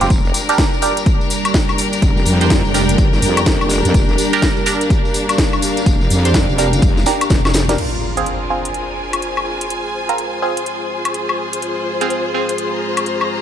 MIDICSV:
0, 0, Header, 1, 7, 480
1, 0, Start_track
1, 0, Tempo, 480000
1, 103, Time_signature, 4, 2, 24, 8
1, 13416, End_track
2, 0, Start_track
2, 0, Title_t, "String section"
2, 0, Program_c, 0, 48
2, 0, Note_on_c, 0, 65, 76
2, 0, Note_on_c, 0, 68, 70
2, 0, Note_on_c, 0, 70, 83
2, 0, Note_on_c, 0, 80, 88
2, 103, Note_off_c, 0, 80, 0
2, 104, Note_off_c, 0, 68, 0
2, 104, Note_on_c, 0, 62, 93
2, 314, Note_on_c, 0, 67, 76
2, 1141, Note_off_c, 0, 65, 0
2, 1483, Note_on_c, 0, 79, 71
2, 4625, Note_on_c, 0, 77, 71
2, 4778, Note_off_c, 0, 79, 0
2, 7784, Note_off_c, 0, 67, 0
2, 7784, Note_on_c, 0, 65, 85
2, 7971, Note_on_c, 0, 68, 80
2, 8258, Note_on_c, 0, 72, 82
2, 8353, Note_on_c, 0, 80, 83
2, 8609, Note_off_c, 0, 77, 0
2, 9539, Note_off_c, 0, 62, 0
2, 9663, Note_off_c, 0, 70, 0
2, 12722, Note_on_c, 0, 82, 91
2, 12843, Note_off_c, 0, 80, 0
2, 13416, Note_off_c, 0, 65, 0
2, 13416, Note_off_c, 0, 68, 0
2, 13416, Note_off_c, 0, 72, 0
2, 13416, Note_off_c, 0, 82, 0
2, 13416, End_track
3, 0, Start_track
3, 0, Title_t, "Synth stab"
3, 0, Program_c, 1, 62
3, 12, Note_on_c, 1, 60, 79
3, 12, Note_on_c, 1, 65, 71
3, 12, Note_on_c, 1, 67, 91
3, 92, Note_off_c, 1, 60, 0
3, 92, Note_off_c, 1, 65, 0
3, 92, Note_off_c, 1, 67, 0
3, 492, Note_on_c, 1, 62, 95
3, 492, Note_on_c, 1, 67, 87
3, 492, Note_on_c, 1, 70, 105
3, 801, Note_off_c, 1, 62, 0
3, 801, Note_off_c, 1, 67, 0
3, 801, Note_off_c, 1, 70, 0
3, 823, Note_on_c, 1, 67, 65
3, 824, Note_on_c, 1, 62, 75
3, 824, Note_on_c, 1, 70, 80
3, 981, Note_off_c, 1, 62, 0
3, 981, Note_off_c, 1, 67, 0
3, 981, Note_off_c, 1, 70, 0
3, 2412, Note_on_c, 1, 62, 71
3, 2412, Note_on_c, 1, 67, 66
3, 2412, Note_on_c, 1, 72, 82
3, 2721, Note_off_c, 1, 62, 0
3, 2721, Note_off_c, 1, 67, 0
3, 2721, Note_off_c, 1, 72, 0
3, 2743, Note_on_c, 1, 62, 74
3, 2743, Note_on_c, 1, 67, 66
3, 2743, Note_on_c, 1, 70, 79
3, 2901, Note_off_c, 1, 62, 0
3, 2901, Note_off_c, 1, 67, 0
3, 2901, Note_off_c, 1, 70, 0
3, 4332, Note_on_c, 1, 62, 94
3, 4332, Note_on_c, 1, 67, 86
3, 4332, Note_on_c, 1, 70, 107
3, 4641, Note_off_c, 1, 70, 0
3, 4642, Note_off_c, 1, 62, 0
3, 4642, Note_off_c, 1, 67, 0
3, 4663, Note_on_c, 1, 62, 76
3, 4663, Note_on_c, 1, 67, 69
3, 4664, Note_on_c, 1, 70, 81
3, 4821, Note_off_c, 1, 62, 0
3, 4821, Note_off_c, 1, 67, 0
3, 4821, Note_off_c, 1, 70, 0
3, 6252, Note_on_c, 1, 62, 72
3, 6252, Note_on_c, 1, 67, 66
3, 6252, Note_on_c, 1, 72, 80
3, 6561, Note_off_c, 1, 62, 0
3, 6561, Note_off_c, 1, 67, 0
3, 6561, Note_off_c, 1, 72, 0
3, 6583, Note_on_c, 1, 62, 74
3, 6583, Note_on_c, 1, 67, 65
3, 6583, Note_on_c, 1, 70, 82
3, 6741, Note_off_c, 1, 62, 0
3, 6741, Note_off_c, 1, 67, 0
3, 6741, Note_off_c, 1, 70, 0
3, 7063, Note_on_c, 1, 62, 76
3, 7063, Note_on_c, 1, 67, 70
3, 7063, Note_on_c, 1, 70, 81
3, 7282, Note_off_c, 1, 62, 0
3, 7282, Note_off_c, 1, 67, 0
3, 7282, Note_off_c, 1, 70, 0
3, 7691, Note_on_c, 1, 62, 80
3, 7691, Note_on_c, 1, 67, 73
3, 7691, Note_on_c, 1, 70, 89
3, 7772, Note_off_c, 1, 62, 0
3, 7772, Note_off_c, 1, 67, 0
3, 7772, Note_off_c, 1, 70, 0
3, 8172, Note_on_c, 1, 60, 90
3, 8172, Note_on_c, 1, 65, 84
3, 8172, Note_on_c, 1, 68, 101
3, 8481, Note_off_c, 1, 60, 0
3, 8481, Note_off_c, 1, 65, 0
3, 8481, Note_off_c, 1, 68, 0
3, 8503, Note_on_c, 1, 60, 69
3, 8503, Note_on_c, 1, 65, 65
3, 8503, Note_on_c, 1, 68, 80
3, 8661, Note_off_c, 1, 60, 0
3, 8661, Note_off_c, 1, 65, 0
3, 8661, Note_off_c, 1, 68, 0
3, 10091, Note_on_c, 1, 60, 70
3, 10091, Note_on_c, 1, 65, 63
3, 10091, Note_on_c, 1, 70, 75
3, 10401, Note_off_c, 1, 60, 0
3, 10401, Note_off_c, 1, 65, 0
3, 10401, Note_off_c, 1, 70, 0
3, 10423, Note_on_c, 1, 68, 76
3, 10424, Note_on_c, 1, 60, 70
3, 10424, Note_on_c, 1, 65, 63
3, 10581, Note_off_c, 1, 60, 0
3, 10581, Note_off_c, 1, 65, 0
3, 10581, Note_off_c, 1, 68, 0
3, 12011, Note_on_c, 1, 60, 92
3, 12011, Note_on_c, 1, 65, 85
3, 12011, Note_on_c, 1, 68, 99
3, 12321, Note_off_c, 1, 60, 0
3, 12321, Note_off_c, 1, 65, 0
3, 12321, Note_off_c, 1, 68, 0
3, 12343, Note_on_c, 1, 60, 74
3, 12343, Note_on_c, 1, 65, 64
3, 12343, Note_on_c, 1, 68, 80
3, 12501, Note_off_c, 1, 60, 0
3, 12501, Note_off_c, 1, 65, 0
3, 12501, Note_off_c, 1, 68, 0
3, 13416, End_track
4, 0, Start_track
4, 0, Title_t, "Analog synth pad"
4, 0, Program_c, 2, 89
4, 103, Note_on_c, 2, 55, 85
4, 103, Note_on_c, 2, 62, 78
4, 103, Note_on_c, 2, 70, 93
4, 7743, Note_off_c, 2, 55, 0
4, 7743, Note_off_c, 2, 62, 0
4, 7743, Note_off_c, 2, 70, 0
4, 7782, Note_on_c, 2, 56, 79
4, 7782, Note_on_c, 2, 72, 89
4, 7783, Note_on_c, 2, 65, 74
4, 13416, Note_off_c, 2, 56, 0
4, 13416, Note_off_c, 2, 65, 0
4, 13416, Note_off_c, 2, 72, 0
4, 13416, End_track
5, 0, Start_track
5, 0, Title_t, "Wobble bass"
5, 0, Program_c, 3, 39
5, 11, Note_on_c, 3, 29, 92
5, 88, Note_off_c, 3, 29, 0
5, 103, Note_on_c, 3, 29, 97
5, 328, Note_off_c, 3, 29, 0
5, 2023, Note_on_c, 3, 29, 93
5, 2248, Note_off_c, 3, 29, 0
5, 2262, Note_on_c, 3, 41, 98
5, 2627, Note_off_c, 3, 41, 0
5, 2651, Note_on_c, 3, 29, 100
5, 2968, Note_off_c, 3, 29, 0
5, 2983, Note_on_c, 3, 31, 91
5, 3208, Note_off_c, 3, 31, 0
5, 3223, Note_on_c, 3, 41, 101
5, 3588, Note_off_c, 3, 41, 0
5, 3611, Note_on_c, 3, 29, 96
5, 3828, Note_off_c, 3, 29, 0
5, 3851, Note_on_c, 3, 41, 97
5, 3928, Note_off_c, 3, 41, 0
5, 3943, Note_on_c, 3, 29, 97
5, 4168, Note_off_c, 3, 29, 0
5, 5863, Note_on_c, 3, 29, 99
5, 6088, Note_off_c, 3, 29, 0
5, 6104, Note_on_c, 3, 41, 99
5, 6468, Note_off_c, 3, 41, 0
5, 6491, Note_on_c, 3, 29, 101
5, 6808, Note_off_c, 3, 29, 0
5, 6823, Note_on_c, 3, 29, 93
5, 7048, Note_off_c, 3, 29, 0
5, 7303, Note_on_c, 3, 29, 96
5, 7768, Note_off_c, 3, 29, 0
5, 13416, End_track
6, 0, Start_track
6, 0, Title_t, "Impact"
6, 0, Program_c, 4, 103
6, 7783, Note_on_c, 4, 60, 66
6, 9703, Note_off_c, 4, 60, 0
6, 13416, End_track
7, 0, Start_track
7, 0, Title_t, "Drums"
7, 10, Note_on_c, 9, 42, 62
7, 11, Note_on_c, 9, 54, 43
7, 102, Note_off_c, 9, 42, 0
7, 102, Note_on_c, 9, 42, 51
7, 103, Note_on_c, 9, 36, 120
7, 108, Note_off_c, 9, 54, 0
7, 108, Note_on_c, 9, 54, 51
7, 202, Note_off_c, 9, 42, 0
7, 203, Note_off_c, 9, 36, 0
7, 208, Note_off_c, 9, 54, 0
7, 250, Note_on_c, 9, 54, 26
7, 342, Note_off_c, 9, 54, 0
7, 342, Note_on_c, 9, 46, 105
7, 342, Note_on_c, 9, 54, 99
7, 442, Note_off_c, 9, 46, 0
7, 442, Note_off_c, 9, 54, 0
7, 490, Note_on_c, 9, 42, 61
7, 498, Note_on_c, 9, 54, 40
7, 582, Note_on_c, 9, 38, 112
7, 583, Note_off_c, 9, 42, 0
7, 583, Note_on_c, 9, 36, 105
7, 583, Note_on_c, 9, 42, 50
7, 589, Note_off_c, 9, 54, 0
7, 589, Note_on_c, 9, 54, 51
7, 682, Note_off_c, 9, 38, 0
7, 683, Note_off_c, 9, 36, 0
7, 683, Note_off_c, 9, 42, 0
7, 689, Note_off_c, 9, 54, 0
7, 733, Note_on_c, 9, 54, 26
7, 820, Note_off_c, 9, 54, 0
7, 820, Note_on_c, 9, 54, 97
7, 823, Note_on_c, 9, 46, 103
7, 920, Note_off_c, 9, 54, 0
7, 923, Note_off_c, 9, 46, 0
7, 969, Note_on_c, 9, 54, 38
7, 971, Note_on_c, 9, 42, 63
7, 1062, Note_off_c, 9, 42, 0
7, 1062, Note_on_c, 9, 42, 51
7, 1063, Note_on_c, 9, 36, 122
7, 1069, Note_off_c, 9, 54, 0
7, 1070, Note_on_c, 9, 54, 45
7, 1162, Note_off_c, 9, 42, 0
7, 1163, Note_off_c, 9, 36, 0
7, 1170, Note_off_c, 9, 54, 0
7, 1211, Note_on_c, 9, 54, 25
7, 1302, Note_on_c, 9, 46, 102
7, 1307, Note_off_c, 9, 54, 0
7, 1307, Note_on_c, 9, 54, 94
7, 1402, Note_off_c, 9, 46, 0
7, 1407, Note_off_c, 9, 54, 0
7, 1450, Note_on_c, 9, 42, 62
7, 1450, Note_on_c, 9, 76, 78
7, 1457, Note_on_c, 9, 54, 38
7, 1541, Note_off_c, 9, 54, 0
7, 1541, Note_on_c, 9, 54, 53
7, 1542, Note_off_c, 9, 42, 0
7, 1542, Note_on_c, 9, 38, 115
7, 1542, Note_on_c, 9, 42, 50
7, 1543, Note_on_c, 9, 36, 106
7, 1550, Note_off_c, 9, 76, 0
7, 1641, Note_off_c, 9, 54, 0
7, 1642, Note_off_c, 9, 38, 0
7, 1642, Note_off_c, 9, 42, 0
7, 1643, Note_off_c, 9, 36, 0
7, 1691, Note_on_c, 9, 76, 65
7, 1692, Note_on_c, 9, 54, 26
7, 1783, Note_on_c, 9, 46, 106
7, 1788, Note_off_c, 9, 54, 0
7, 1788, Note_on_c, 9, 54, 84
7, 1791, Note_off_c, 9, 76, 0
7, 1883, Note_off_c, 9, 46, 0
7, 1888, Note_off_c, 9, 54, 0
7, 1925, Note_on_c, 9, 54, 40
7, 1931, Note_on_c, 9, 42, 61
7, 2023, Note_off_c, 9, 42, 0
7, 2023, Note_off_c, 9, 54, 0
7, 2023, Note_on_c, 9, 36, 111
7, 2023, Note_on_c, 9, 42, 53
7, 2023, Note_on_c, 9, 54, 49
7, 2122, Note_off_c, 9, 42, 0
7, 2123, Note_off_c, 9, 36, 0
7, 2123, Note_off_c, 9, 54, 0
7, 2171, Note_on_c, 9, 54, 28
7, 2255, Note_off_c, 9, 54, 0
7, 2255, Note_on_c, 9, 54, 81
7, 2263, Note_on_c, 9, 46, 98
7, 2355, Note_off_c, 9, 54, 0
7, 2363, Note_off_c, 9, 46, 0
7, 2406, Note_on_c, 9, 54, 40
7, 2411, Note_on_c, 9, 42, 61
7, 2502, Note_on_c, 9, 38, 115
7, 2503, Note_off_c, 9, 42, 0
7, 2503, Note_on_c, 9, 36, 100
7, 2503, Note_on_c, 9, 42, 53
7, 2506, Note_off_c, 9, 54, 0
7, 2508, Note_on_c, 9, 54, 48
7, 2602, Note_off_c, 9, 38, 0
7, 2603, Note_off_c, 9, 36, 0
7, 2603, Note_off_c, 9, 42, 0
7, 2608, Note_off_c, 9, 54, 0
7, 2648, Note_on_c, 9, 54, 22
7, 2743, Note_on_c, 9, 46, 98
7, 2746, Note_off_c, 9, 54, 0
7, 2746, Note_on_c, 9, 54, 88
7, 2843, Note_off_c, 9, 46, 0
7, 2846, Note_off_c, 9, 54, 0
7, 2892, Note_on_c, 9, 42, 67
7, 2902, Note_on_c, 9, 54, 36
7, 2983, Note_off_c, 9, 42, 0
7, 2983, Note_on_c, 9, 36, 117
7, 2983, Note_on_c, 9, 42, 54
7, 2986, Note_off_c, 9, 54, 0
7, 2986, Note_on_c, 9, 54, 46
7, 3083, Note_off_c, 9, 36, 0
7, 3083, Note_off_c, 9, 42, 0
7, 3086, Note_off_c, 9, 54, 0
7, 3131, Note_on_c, 9, 38, 34
7, 3136, Note_on_c, 9, 54, 26
7, 3223, Note_on_c, 9, 46, 102
7, 3225, Note_off_c, 9, 54, 0
7, 3225, Note_on_c, 9, 54, 95
7, 3231, Note_off_c, 9, 38, 0
7, 3323, Note_off_c, 9, 46, 0
7, 3325, Note_off_c, 9, 54, 0
7, 3372, Note_on_c, 9, 42, 62
7, 3372, Note_on_c, 9, 76, 82
7, 3376, Note_on_c, 9, 54, 35
7, 3460, Note_off_c, 9, 54, 0
7, 3460, Note_on_c, 9, 54, 51
7, 3463, Note_on_c, 9, 36, 101
7, 3463, Note_on_c, 9, 38, 112
7, 3464, Note_off_c, 9, 42, 0
7, 3464, Note_on_c, 9, 42, 51
7, 3472, Note_off_c, 9, 76, 0
7, 3560, Note_off_c, 9, 54, 0
7, 3563, Note_off_c, 9, 36, 0
7, 3563, Note_off_c, 9, 38, 0
7, 3564, Note_off_c, 9, 42, 0
7, 3612, Note_on_c, 9, 54, 25
7, 3612, Note_on_c, 9, 76, 69
7, 3695, Note_off_c, 9, 54, 0
7, 3695, Note_on_c, 9, 54, 96
7, 3703, Note_on_c, 9, 46, 101
7, 3712, Note_off_c, 9, 76, 0
7, 3795, Note_off_c, 9, 54, 0
7, 3803, Note_off_c, 9, 46, 0
7, 3852, Note_on_c, 9, 42, 66
7, 3853, Note_on_c, 9, 54, 39
7, 3943, Note_on_c, 9, 36, 115
7, 3944, Note_off_c, 9, 42, 0
7, 3944, Note_on_c, 9, 42, 54
7, 3950, Note_off_c, 9, 54, 0
7, 3950, Note_on_c, 9, 54, 50
7, 4043, Note_off_c, 9, 36, 0
7, 4044, Note_off_c, 9, 42, 0
7, 4049, Note_off_c, 9, 54, 0
7, 4088, Note_on_c, 9, 54, 23
7, 4181, Note_off_c, 9, 54, 0
7, 4181, Note_on_c, 9, 54, 97
7, 4184, Note_on_c, 9, 46, 98
7, 4281, Note_off_c, 9, 54, 0
7, 4284, Note_off_c, 9, 46, 0
7, 4330, Note_on_c, 9, 54, 38
7, 4332, Note_on_c, 9, 42, 64
7, 4423, Note_on_c, 9, 36, 99
7, 4423, Note_on_c, 9, 38, 117
7, 4424, Note_off_c, 9, 42, 0
7, 4424, Note_on_c, 9, 42, 52
7, 4426, Note_off_c, 9, 54, 0
7, 4426, Note_on_c, 9, 54, 49
7, 4523, Note_off_c, 9, 36, 0
7, 4523, Note_off_c, 9, 38, 0
7, 4523, Note_off_c, 9, 42, 0
7, 4526, Note_off_c, 9, 54, 0
7, 4568, Note_on_c, 9, 54, 23
7, 4660, Note_off_c, 9, 54, 0
7, 4660, Note_on_c, 9, 54, 90
7, 4664, Note_on_c, 9, 46, 101
7, 4760, Note_off_c, 9, 54, 0
7, 4764, Note_off_c, 9, 46, 0
7, 4812, Note_on_c, 9, 42, 71
7, 4815, Note_on_c, 9, 54, 35
7, 4903, Note_on_c, 9, 36, 115
7, 4904, Note_off_c, 9, 42, 0
7, 4904, Note_on_c, 9, 42, 58
7, 4910, Note_off_c, 9, 54, 0
7, 4910, Note_on_c, 9, 54, 45
7, 5003, Note_off_c, 9, 36, 0
7, 5004, Note_off_c, 9, 42, 0
7, 5010, Note_off_c, 9, 54, 0
7, 5051, Note_on_c, 9, 54, 24
7, 5141, Note_off_c, 9, 54, 0
7, 5141, Note_on_c, 9, 54, 79
7, 5144, Note_on_c, 9, 46, 101
7, 5241, Note_off_c, 9, 54, 0
7, 5244, Note_off_c, 9, 46, 0
7, 5292, Note_on_c, 9, 42, 65
7, 5292, Note_on_c, 9, 76, 83
7, 5295, Note_on_c, 9, 54, 34
7, 5383, Note_on_c, 9, 36, 99
7, 5383, Note_on_c, 9, 38, 118
7, 5384, Note_off_c, 9, 42, 0
7, 5384, Note_on_c, 9, 42, 54
7, 5386, Note_off_c, 9, 54, 0
7, 5386, Note_on_c, 9, 54, 50
7, 5392, Note_off_c, 9, 76, 0
7, 5483, Note_off_c, 9, 36, 0
7, 5483, Note_off_c, 9, 38, 0
7, 5484, Note_off_c, 9, 42, 0
7, 5486, Note_off_c, 9, 54, 0
7, 5531, Note_on_c, 9, 54, 25
7, 5532, Note_on_c, 9, 76, 69
7, 5624, Note_off_c, 9, 54, 0
7, 5624, Note_on_c, 9, 46, 101
7, 5624, Note_on_c, 9, 54, 79
7, 5632, Note_off_c, 9, 76, 0
7, 5724, Note_off_c, 9, 46, 0
7, 5724, Note_off_c, 9, 54, 0
7, 5769, Note_on_c, 9, 54, 37
7, 5772, Note_on_c, 9, 42, 67
7, 5861, Note_off_c, 9, 54, 0
7, 5861, Note_on_c, 9, 54, 52
7, 5863, Note_on_c, 9, 36, 117
7, 5864, Note_off_c, 9, 42, 0
7, 5864, Note_on_c, 9, 42, 57
7, 5961, Note_off_c, 9, 54, 0
7, 5963, Note_off_c, 9, 36, 0
7, 5964, Note_off_c, 9, 42, 0
7, 6011, Note_on_c, 9, 54, 23
7, 6103, Note_on_c, 9, 46, 102
7, 6111, Note_off_c, 9, 54, 0
7, 6112, Note_on_c, 9, 54, 89
7, 6203, Note_off_c, 9, 46, 0
7, 6212, Note_off_c, 9, 54, 0
7, 6252, Note_on_c, 9, 42, 68
7, 6252, Note_on_c, 9, 54, 36
7, 6339, Note_off_c, 9, 54, 0
7, 6339, Note_on_c, 9, 54, 51
7, 6343, Note_on_c, 9, 36, 98
7, 6343, Note_on_c, 9, 38, 124
7, 6344, Note_off_c, 9, 42, 0
7, 6344, Note_on_c, 9, 42, 55
7, 6439, Note_off_c, 9, 54, 0
7, 6443, Note_off_c, 9, 36, 0
7, 6443, Note_off_c, 9, 38, 0
7, 6443, Note_off_c, 9, 42, 0
7, 6494, Note_on_c, 9, 54, 24
7, 6583, Note_on_c, 9, 46, 104
7, 6588, Note_off_c, 9, 54, 0
7, 6588, Note_on_c, 9, 54, 91
7, 6683, Note_off_c, 9, 46, 0
7, 6688, Note_off_c, 9, 54, 0
7, 6729, Note_on_c, 9, 54, 38
7, 6732, Note_on_c, 9, 42, 68
7, 6823, Note_off_c, 9, 42, 0
7, 6823, Note_on_c, 9, 36, 119
7, 6823, Note_on_c, 9, 42, 60
7, 6828, Note_off_c, 9, 54, 0
7, 6828, Note_on_c, 9, 54, 54
7, 6923, Note_off_c, 9, 36, 0
7, 6923, Note_off_c, 9, 42, 0
7, 6928, Note_off_c, 9, 54, 0
7, 6971, Note_on_c, 9, 38, 37
7, 6973, Note_on_c, 9, 54, 25
7, 7060, Note_off_c, 9, 54, 0
7, 7060, Note_on_c, 9, 54, 89
7, 7064, Note_off_c, 9, 38, 0
7, 7064, Note_on_c, 9, 38, 61
7, 7064, Note_on_c, 9, 46, 97
7, 7159, Note_off_c, 9, 54, 0
7, 7164, Note_off_c, 9, 38, 0
7, 7164, Note_off_c, 9, 46, 0
7, 7212, Note_on_c, 9, 42, 68
7, 7212, Note_on_c, 9, 76, 81
7, 7216, Note_on_c, 9, 54, 37
7, 7298, Note_off_c, 9, 54, 0
7, 7298, Note_on_c, 9, 54, 44
7, 7303, Note_on_c, 9, 36, 104
7, 7304, Note_off_c, 9, 42, 0
7, 7304, Note_on_c, 9, 38, 79
7, 7304, Note_on_c, 9, 42, 55
7, 7312, Note_off_c, 9, 76, 0
7, 7398, Note_off_c, 9, 54, 0
7, 7403, Note_off_c, 9, 36, 0
7, 7403, Note_off_c, 9, 38, 0
7, 7403, Note_off_c, 9, 42, 0
7, 7449, Note_on_c, 9, 54, 23
7, 7452, Note_on_c, 9, 38, 72
7, 7452, Note_on_c, 9, 76, 69
7, 7536, Note_off_c, 9, 54, 0
7, 7536, Note_on_c, 9, 54, 90
7, 7544, Note_off_c, 9, 38, 0
7, 7544, Note_on_c, 9, 38, 98
7, 7544, Note_on_c, 9, 46, 102
7, 7552, Note_off_c, 9, 76, 0
7, 7636, Note_off_c, 9, 54, 0
7, 7644, Note_off_c, 9, 38, 0
7, 7644, Note_off_c, 9, 46, 0
7, 7692, Note_on_c, 9, 38, 89
7, 7692, Note_on_c, 9, 42, 72
7, 7693, Note_on_c, 9, 54, 39
7, 7784, Note_off_c, 9, 42, 0
7, 7784, Note_on_c, 9, 42, 50
7, 7784, Note_on_c, 9, 49, 78
7, 7792, Note_off_c, 9, 38, 0
7, 7793, Note_off_c, 9, 54, 0
7, 7884, Note_off_c, 9, 42, 0
7, 7884, Note_off_c, 9, 49, 0
7, 8172, Note_on_c, 9, 42, 63
7, 8264, Note_off_c, 9, 42, 0
7, 8264, Note_on_c, 9, 42, 51
7, 8364, Note_off_c, 9, 42, 0
7, 8652, Note_on_c, 9, 42, 64
7, 8744, Note_off_c, 9, 42, 0
7, 8744, Note_on_c, 9, 42, 51
7, 8844, Note_off_c, 9, 42, 0
7, 9132, Note_on_c, 9, 42, 60
7, 9132, Note_on_c, 9, 76, 69
7, 9224, Note_off_c, 9, 42, 0
7, 9224, Note_on_c, 9, 42, 50
7, 9232, Note_off_c, 9, 76, 0
7, 9324, Note_off_c, 9, 42, 0
7, 9372, Note_on_c, 9, 76, 59
7, 9472, Note_off_c, 9, 76, 0
7, 9612, Note_on_c, 9, 42, 64
7, 9704, Note_off_c, 9, 42, 0
7, 9704, Note_on_c, 9, 42, 51
7, 9804, Note_off_c, 9, 42, 0
7, 10092, Note_on_c, 9, 42, 58
7, 10183, Note_off_c, 9, 42, 0
7, 10183, Note_on_c, 9, 42, 48
7, 10283, Note_off_c, 9, 42, 0
7, 10572, Note_on_c, 9, 42, 65
7, 10663, Note_off_c, 9, 42, 0
7, 10663, Note_on_c, 9, 42, 51
7, 10763, Note_off_c, 9, 42, 0
7, 11052, Note_on_c, 9, 42, 58
7, 11052, Note_on_c, 9, 76, 67
7, 11143, Note_off_c, 9, 42, 0
7, 11143, Note_on_c, 9, 42, 49
7, 11152, Note_off_c, 9, 76, 0
7, 11243, Note_off_c, 9, 42, 0
7, 11292, Note_on_c, 9, 76, 59
7, 11392, Note_off_c, 9, 76, 0
7, 11532, Note_on_c, 9, 42, 62
7, 11623, Note_off_c, 9, 42, 0
7, 11623, Note_on_c, 9, 42, 49
7, 11723, Note_off_c, 9, 42, 0
7, 12011, Note_on_c, 9, 42, 57
7, 12103, Note_off_c, 9, 42, 0
7, 12103, Note_on_c, 9, 42, 48
7, 12203, Note_off_c, 9, 42, 0
7, 12491, Note_on_c, 9, 42, 61
7, 12583, Note_off_c, 9, 42, 0
7, 12583, Note_on_c, 9, 42, 50
7, 12683, Note_off_c, 9, 42, 0
7, 12971, Note_on_c, 9, 42, 56
7, 12971, Note_on_c, 9, 76, 70
7, 13063, Note_off_c, 9, 42, 0
7, 13063, Note_on_c, 9, 42, 47
7, 13071, Note_off_c, 9, 76, 0
7, 13163, Note_off_c, 9, 42, 0
7, 13211, Note_on_c, 9, 76, 57
7, 13311, Note_off_c, 9, 76, 0
7, 13416, End_track
0, 0, End_of_file